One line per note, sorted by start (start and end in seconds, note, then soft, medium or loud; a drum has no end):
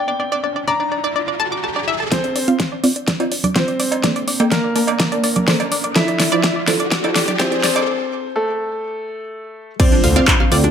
0.00 0.58 G5 medium
0.00 riser medium
0.08 0.14 D5 medium
0.20 0.26 D5 medium
0.32 0.38 D5 loud
0.44 0.50 D5 medium
0.56 0.62 D5 medium
0.68 0.74 D5 loud
0.68 2.02 A#5 medium
0.80 0.86 D5 medium
0.92 0.98 D5 medium
1.04 1.10 D5 loud
1.16 1.22 D5 medium
1.28 1.34 D5 medium
1.40 1.46 A5 loud
1.52 1.58 D6 medium
1.64 1.73 A5 medium
1.76 1.82 D5 medium
1.88 1.97 E5 loud
2.00 2.03 A5 medium
2.12 2.74 C4 medium
2.12 2.45 C4 medium
2.12 2.45 F4 medium
2.12 2.74 C5 loud
2.12 2.18 D5 medium
2.12 2.45 D5 medium
2.12 kick loud
2.12 snare soft
2.12 closed hi-hat medium
2.12 riser medium
2.24 2.30 D5 medium
2.24 closed hi-hat soft
2.36 2.42 D5 loud
2.36 open hi-hat loud
2.48 2.81 C4 loud
2.48 2.81 F4 medium
2.48 2.54 D5 medium
2.48 2.81 F5 loud
2.48 closed hi-hat medium
2.60 2.66 D5 medium
2.60 kick loud
2.60 snare soft
2.60 closed hi-hat medium
2.72 2.78 D5 loud
2.84 3.17 C4 medium
2.84 3.17 F4 medium
2.84 3.17 D5 medium
2.84 2.90 D5 medium
2.84 open hi-hat loud
2.96 3.02 D5 medium
2.96 closed hi-hat medium
3.08 3.14 D5 loud
3.08 kick loud
3.08 snare medium
3.08 closed hi-hat medium
3.20 3.53 C4 medium
3.20 3.53 F4 medium
3.20 3.53 D5 medium
3.20 3.26 D5 medium
3.20 closed hi-hat soft
3.20 cowbell medium
3.32 3.38 D5 medium
3.32 open hi-hat loud
3.44 3.50 D5 loud
3.44 closed hi-hat medium
3.44 high conga medium
3.56 4.42 C4 medium
3.56 3.63 C4 medium
3.56 3.63 F4 medium
3.56 4.42 C5 medium
3.56 3.63 C5 loud
3.56 3.62 D5 medium
3.56 kick loud
3.56 snare medium
3.56 closed hi-hat medium
3.68 3.74 D5 medium
3.68 closed hi-hat soft
3.80 3.86 D5 loud
3.80 open hi-hat loud
3.92 3.98 D5 medium
3.92 closed hi-hat medium
3.92 cowbell medium
4.04 4.37 A#3 medium
4.04 4.37 A4 medium
4.04 4.37 D5 loud
4.04 4.10 D5 medium
4.04 kick loud
4.04 snare medium
4.04 closed hi-hat medium
4.16 4.22 D5 loud
4.16 closed hi-hat soft
4.28 4.34 D5 medium
4.28 open hi-hat loud
4.40 4.73 A#3 loud
4.40 4.73 A4 medium
4.40 4.46 D5 medium
4.40 4.73 G5 loud
4.40 closed hi-hat medium
4.40 cowbell loud
4.52 5.86 A#3 medium
4.52 5.86 A#4 medium
4.52 4.58 D5 loud
4.52 kick loud
4.52 snare medium
4.52 closed hi-hat medium
4.64 4.70 D5 medium
4.76 5.09 A#3 medium
4.76 5.09 D5 medium
4.76 4.82 D5 medium
4.76 5.09 A5 medium
4.76 open hi-hat loud
4.87 4.94 D5 loud
4.87 closed hi-hat medium
4.87 cowbell medium
5.00 5.06 D5 medium
5.00 kick loud
5.00 snare medium
5.00 closed hi-hat medium
5.12 5.45 A#3 medium
5.12 5.45 D5 medium
5.12 5.18 D5 medium
5.12 5.45 A5 medium
5.12 closed hi-hat soft
5.24 5.30 D5 loud
5.24 open hi-hat loud
5.36 5.42 D5 medium
5.36 closed hi-hat medium
5.36 high conga medium
5.48 5.55 A#3 medium
5.48 5.55 A4 medium
5.48 5.55 C5 loud
5.48 5.54 D5 medium
5.48 kick loud
5.48 snare medium
5.48 open hi-hat medium
5.60 5.66 D5 loud
5.60 closed hi-hat soft
5.60 cowbell medium
5.72 5.78 D5 medium
5.72 open hi-hat loud
5.84 5.90 D5 medium
5.84 closed hi-hat medium
5.96 6.29 F3 medium
5.96 6.29 E4 medium
5.96 6.58 E4 medium
5.96 6.29 A4 loud
5.96 6.02 D5 loud
5.96 6.58 E5 loud
5.96 kick loud
5.96 snare medium
5.96 closed hi-hat medium
6.08 6.14 D5 medium
6.08 closed hi-hat soft
6.20 6.26 D5 medium
6.20 snare medium
6.20 open hi-hat loud
6.32 6.65 F3 loud
6.32 6.65 E4 medium
6.32 6.65 D5 loud
6.32 6.38 D5 loud
6.32 closed hi-hat medium
6.44 6.50 D5 medium
6.44 kick loud
6.44 snare medium
6.44 closed hi-hat medium
6.56 6.62 D5 medium
6.68 7.01 F3 medium
6.68 7.01 E4 medium
6.68 7.01 A4 medium
6.68 6.74 D5 loud
6.68 snare medium
6.68 open hi-hat loud
6.80 6.86 D5 medium
6.80 closed hi-hat medium
6.92 6.98 D5 medium
6.92 kick loud
6.92 snare medium
6.92 closed hi-hat medium
7.04 7.37 F3 medium
7.04 7.37 E4 medium
7.04 7.37 A4 medium
7.04 7.10 D5 loud
7.04 closed hi-hat soft
7.04 cowbell medium
7.16 7.22 D5 medium
7.16 snare medium
7.16 open hi-hat loud
7.28 7.34 D5 medium
7.28 closed hi-hat medium
7.28 high conga medium
7.40 7.47 F3 loud
7.40 8.26 C4 medium
7.40 7.47 E4 medium
7.40 7.47 G4 loud
7.40 8.26 C5 loud
7.40 7.46 D5 loud
7.40 kick loud
7.40 snare medium
7.40 closed hi-hat medium
7.52 7.58 D5 medium
7.52 closed hi-hat soft
7.64 7.70 D5 medium
7.64 snare medium
7.64 open hi-hat loud
7.76 7.82 D5 loud
7.76 closed hi-hat medium
7.76 cowbell medium
8.36 9.70 A3 medium
8.36 9.70 A4 medium
9.80 10.42 C4 medium
9.80 10.13 C4 medium
9.80 10.13 F4 medium
9.80 10.42 C5 loud
9.80 10.13 D5 loud
9.80 9.89 D5 medium
9.80 kick loud
9.80 closed hi-hat medium
9.80 crash loud
9.80 impact medium
9.92 9.98 D4 medium
9.92 closed hi-hat soft
10.04 10.21 D2 loud
10.04 10.13 F5 medium
10.04 open hi-hat loud
10.16 10.49 C4 loud
10.16 10.49 F4 medium
10.16 10.25 D5 medium
10.16 10.49 F5 loud
10.16 closed hi-hat medium
10.28 10.34 D4 medium
10.28 kick loud
10.28 clap loud
10.28 closed hi-hat medium
10.40 10.49 F5 medium
10.40 high bongo medium
10.52 10.69 D2 loud
10.52 10.71 C4 medium
10.52 10.71 F4 medium
10.52 10.61 D5 medium
10.52 10.71 D5 medium
10.52 open hi-hat loud
10.64 10.70 D4 medium
10.64 closed hi-hat medium
10.64 high bongo medium